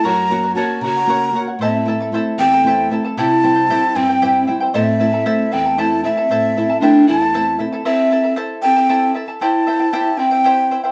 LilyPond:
<<
  \new Staff \with { instrumentName = "Quena" } { \time 6/8 \key a \dorian \tempo 4. = 77 ais''4 a''8 ais''4 r8 | e''4 r8 g''4 r8 | a''4. g''4 r8 | e''4. g''8 a''8 e''8~ |
e''4 g''8 a''4 r8 | e''4 r8 g''4 r8 | a''4. g''4 r8 | }
  \new Staff \with { instrumentName = "Charango" } { \time 6/8 \key a \dorian <ais' cis'' fis''>8 <ais' cis'' fis''>16 <cis'' fis''>16 <ais' cis'' fis''>8 <ais' cis'' fis''>16 <cis'' fis''>16 <ais' cis'' fis''>8 <ais' cis'' fis''>16 <cis'' fis''>16 | <e' a' c'' e'' a''>8 <e' a' e'' a''>16 <e' a' a''>16 <e' a' c'' e'' a''>8 <e' a' e'' a''>16 <e' a' a''>16 <e' a' c'' e'' a''>8 <e' a' e'' a''>16 <e' a' a''>16 | <e' g' c'' e'' g''>8 <e' c'' e'' g''>16 <e' c'' g''>16 <e' g' c'' e'' g''>8 <e' c'' e'' g''>16 <e' c'' g''>16 <e' g' c'' e'' g''>8 <e' c'' e'' g''>16 <e' c'' g''>16 | <e' a' c'' e'' a''>8 <e' a' e'' a''>16 <e' a' a''>16 <e' a' c'' e'' a''>8 <e' a' e'' a''>16 <e' a' a''>16 <e' a' c'' e'' a''>8 <e' a' e'' a''>16 <e' a' a''>16 |
<e' a' c'' e'' a''>8 <e' a' e'' a''>16 <e' a' a''>16 <e' a' c'' e'' a''>8 <e' a' e'' a''>16 <e' a' a''>16 <e' a' c'' e'' a''>8 <e' a' e'' a''>16 <e' a' a''>16 | <e' a' c'' e'' a''>8 <e' a' e'' a''>16 <e' a' a''>16 <e' a' c'' e'' a''>8 <e' a' e'' a''>16 <e' a' a''>16 <e' a' c'' e'' a''>8 <e' a' e'' a''>16 <e' a' a''>16 | <e' g' c'' e'' g''>8 <e' c'' e'' g''>16 <e' c'' g''>16 <e' g' c'' e'' g''>8 <e' c'' e'' g''>16 <e' c'' g''>16 <e' g' c'' e'' g''>8 <e' c'' e'' g''>16 <e' c'' g''>16 | }
  \new Staff \with { instrumentName = "Nylon-string guitar" } { \time 6/8 \key a \dorian fis,8 <ais cis' fis'>8 <ais cis' fis'>8 cis8 <ais cis' fis'>8 <ais cis' fis'>8 | a,8 <a c' e'>8 <a c' e'>8 e,8 <a c' e'>8 <a c' e'>8 | c8 <g c' e'>8 <g c' e'>8 g,8 <g c' e'>8 <g c' e'>8 | a,8 <a c' e'>8 <a c' e'>8 e,8 <a c' e'>8 <a c' e'>8 |
a,8 <a c' e'>8 <a c' e'>8 e,8 <a c' e'>8 <a c' e'>8 | r2. | r2. | }
  \new Staff \with { instrumentName = "Pan flute" } { \time 6/8 \key a \dorian fis'4 fis'8 fis'4 r8 | c'4 r8 c'4 r8 | e'4. c'4 r8 | c'4. c'8 e'8 c'8~ |
c'4 d'8 e'4 r8 | c'4 r8 c'4 r8 | e'4. c'4 r8 | }
>>